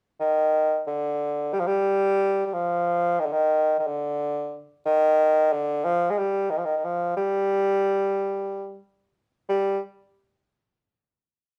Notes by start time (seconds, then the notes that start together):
0.20 D#3
0.87 D3
1.53 G3
1.60 F3
1.67 G3
2.45 G3
2.54 F3
3.20 D#3
3.26 D3
3.33 D#3
3.80 D#3
3.87 D3
4.86 D#3
5.53 D3
5.85 F3
6.11 G#3
6.18 G3
6.50 D#3
6.58 F3
6.65 D#3
6.77 D#3
6.84 F3
7.17 G3
9.49 G3